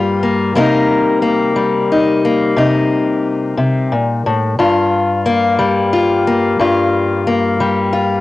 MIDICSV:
0, 0, Header, 1, 2, 480
1, 0, Start_track
1, 0, Key_signature, -2, "minor"
1, 0, Tempo, 671892
1, 397, Time_signature, 12, 3, 24, 8
1, 5862, End_track
2, 0, Start_track
2, 0, Title_t, "Steel-string acoustic guitar"
2, 0, Program_c, 0, 25
2, 0, Note_on_c, 0, 43, 71
2, 0, Note_on_c, 0, 55, 65
2, 0, Note_on_c, 0, 58, 58
2, 0, Note_on_c, 0, 65, 53
2, 160, Note_off_c, 0, 58, 0
2, 163, Note_on_c, 0, 58, 51
2, 378, Note_off_c, 0, 65, 0
2, 393, Note_off_c, 0, 55, 0
2, 394, Note_off_c, 0, 43, 0
2, 396, Note_on_c, 0, 55, 57
2, 400, Note_on_c, 0, 48, 72
2, 401, Note_off_c, 0, 58, 0
2, 404, Note_on_c, 0, 58, 62
2, 412, Note_on_c, 0, 70, 70
2, 417, Note_on_c, 0, 63, 61
2, 869, Note_off_c, 0, 58, 0
2, 871, Note_on_c, 0, 58, 61
2, 1110, Note_off_c, 0, 55, 0
2, 1113, Note_on_c, 0, 55, 66
2, 1361, Note_off_c, 0, 63, 0
2, 1370, Note_on_c, 0, 63, 61
2, 1604, Note_off_c, 0, 58, 0
2, 1606, Note_on_c, 0, 58, 58
2, 1824, Note_off_c, 0, 48, 0
2, 1833, Note_on_c, 0, 48, 74
2, 1835, Note_off_c, 0, 63, 0
2, 1843, Note_on_c, 0, 63, 64
2, 2544, Note_off_c, 0, 48, 0
2, 2553, Note_on_c, 0, 48, 67
2, 2574, Note_off_c, 0, 58, 0
2, 2795, Note_off_c, 0, 48, 0
2, 2799, Note_on_c, 0, 46, 59
2, 3038, Note_off_c, 0, 46, 0
2, 3044, Note_on_c, 0, 45, 65
2, 3250, Note_off_c, 0, 63, 0
2, 3255, Note_off_c, 0, 70, 0
2, 3274, Note_off_c, 0, 45, 0
2, 3277, Note_on_c, 0, 43, 76
2, 3281, Note_on_c, 0, 65, 55
2, 3300, Note_off_c, 0, 55, 0
2, 3755, Note_on_c, 0, 58, 70
2, 3991, Note_on_c, 0, 55, 69
2, 4232, Note_off_c, 0, 65, 0
2, 4235, Note_on_c, 0, 65, 62
2, 4479, Note_off_c, 0, 58, 0
2, 4482, Note_on_c, 0, 58, 56
2, 4709, Note_off_c, 0, 43, 0
2, 4712, Note_on_c, 0, 43, 73
2, 4718, Note_off_c, 0, 65, 0
2, 4721, Note_on_c, 0, 65, 61
2, 5190, Note_off_c, 0, 58, 0
2, 5193, Note_on_c, 0, 58, 56
2, 5427, Note_off_c, 0, 55, 0
2, 5430, Note_on_c, 0, 55, 67
2, 5654, Note_off_c, 0, 65, 0
2, 5663, Note_on_c, 0, 65, 58
2, 5862, Note_off_c, 0, 43, 0
2, 5862, Note_off_c, 0, 55, 0
2, 5862, Note_off_c, 0, 58, 0
2, 5862, Note_off_c, 0, 65, 0
2, 5862, End_track
0, 0, End_of_file